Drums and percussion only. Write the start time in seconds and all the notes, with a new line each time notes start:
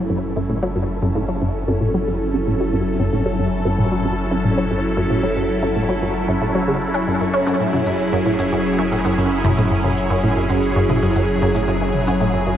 7.47 shaker
7.73 high tom
7.86 shaker
7.99 shaker
8.39 shaker
8.52 shaker
8.92 shaker
9.05 shaker
9.44 high tom, shaker
9.57 shaker
9.84 high tom
9.97 shaker
10.10 shaker
10.49 shaker
10.63 shaker
10.89 high tom
11.02 shaker
11.15 shaker
11.55 shaker
11.68 shaker
11.94 high tom
12.07 shaker
12.21 shaker